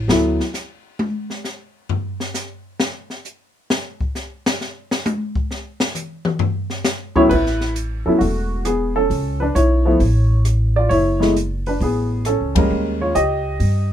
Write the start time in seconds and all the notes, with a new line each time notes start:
0.08 D2 F#3 A3 B3 E4, snare
0.40 snare
0.54 snare, hi-hat pedal
0.99 high tom
1.30 snare
1.45 snare, hi-hat pedal
1.89 floor tom
2.20 snare
2.34 snare, hi-hat pedal
2.80 snare
3.10 snare
3.25 hi-hat pedal
3.70 snare
4.01 kick
4.15 snare, hi-hat pedal
4.46 snare
4.61 snare
4.91 snare
5.06 hi-hat pedal, high tom
5.35 kick
5.51 snare
5.80 snare
5.95 hi-hat pedal, mid tom
6.25 mid tom
6.39 floor tom
6.70 snare
6.85 snare, hi-hat pedal
7.16 A2 F#3 B3 C#4 E4 C#5, kick
7.29 A1 E4 B4, kick, crash
7.46 snare
7.61 snare
7.76 closed hi-hat
8.06 E2 F#3 B3 C#4 E4 A4
8.19 E1 A3 F#4, kick, open hi-hat
8.65 B3 G#4, cross-stick, closed hi-hat
8.96 C#4 A4
9.10 C#2, kick, open hi-hat
9.40 D4 B4
9.55 B1 E4 C#5, closed hi-hat
9.85 F3 A3 B3 E4
10.00 A1, kick, open hi-hat
10.45 cross-stick, closed hi-hat
10.76 F4 D5
10.89 F#1 E4 C#5, kick, open hi-hat
11.20 G#3 A3 B3 E4, snare
11.36 closed hi-hat
11.66 D4 B4, open hi-hat
11.80 A1 B3 G#4, kick, open hi-hat
12.25 C#4 A4, cross-stick, closed hi-hat
12.41 C#2
12.55 E2 G3 G#3 A#3 C#4 A#4, kick, ride
12.71 D#2
13.01 F4 C#5
13.15 C#2 G4 D#5, closed hi-hat
13.60 G2, kick, open hi-hat